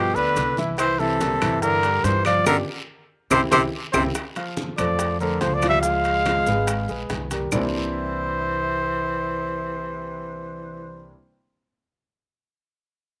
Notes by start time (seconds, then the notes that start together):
Already playing: G2 B2 G4
0.15 D2 D3 B3 B4 D5, high bongo, high conga, maracas
0.36 C2, high bongo, low bongo, high conga, high timbale, short guiro, maracas
0.57 E3 E4 E5, high bongo, high conga, short guiro, maracas
0.78 E3 C5, high bongo, high conga, high timbale, long guiro, claves, maracas
0.99 C3 E3 E4 A4 E5, high conga, maracas
1.20 G3 G4 A#4, high bongo, high conga, high timbale, short guiro, maracas
1.41 G2 E3 E4 E5, high bongo, high conga, low conga, high timbale, short guiro, claves, maracas
1.62 D3 A#4, high bongo, high conga, long guiro, maracas
1.83 G3 G4 A#4, high bongo, high conga, high timbale, maracas
2.04 G2 E3 C5, high bongo, low bongo, high timbale, low timbale, short guiro, maracas
2.25 F3 F4 D5 F5, high bongo, high conga, high timbale, short guiro, claves, maracas
2.46 G1 D3 D4 F4 G4 A#4, high bongo, high conga, high timbale, long guiro, claves, maracas
3.31 C2 C3 C4 E4 G4 C5, high bongo, high conga, high timbale, long guiro, claves, maracas
3.51 C2 C3 C4 E4 G4 C5, high bongo, high conga, high timbale, long guiro, claves, maracas
3.92 C2 C3 C4 E4 G4 C5, high bongo, high conga, high timbale, long guiro, claves, maracas
4.15 high bongo, high conga, high timbale, long guiro, claves, maracas
4.36 F3 F4 F5, high conga, high timbale, maracas
4.57 high bongo, high conga, short guiro, maracas
4.78 F2 F3 A3 A4 C5 D5, high conga, low conga, high timbale, short guiro, claves, maracas
4.98 high bongo, high conga, high timbale, long guiro, maracas
5.20 D3 A3 A4 A#4 C5, high conga, maracas
5.40 C#2 F3 C5, high bongo, low bongo, high conga, high timbale, short guiro, maracas
5.54 F3 D5
5.62 F3 F4 F5, high conga, high timbale, short guiro, claves, maracas
5.69 G3 E5
5.82 F3 G#3 F4 F5, high bongo, high conga, long guiro, maracas
6.04 high bongo, high conga, high timbale, maracas
6.25 F3 F4 F5, high bongo, high conga, high timbale, short guiro, claves, maracas
6.46 G#1 G#3 G#4 B4, high bongo, high conga, short guiro, maracas
6.67 high bongo, high conga, high timbale, long guiro, claves, maracas
6.88 A#1 G#3 G#4 B4, high bongo, high conga, maracas
7.09 C2, high bongo, low bongo, high conga, high timbale, short guiro, maracas
7.31 G3 G4 A#4, high conga, high timbale, short guiro, maracas
7.52 C2 C3 E3 G3 A#3 C4 D4 E4 C5, low bongo, low conga, low timbale, long guiro, claves, maracas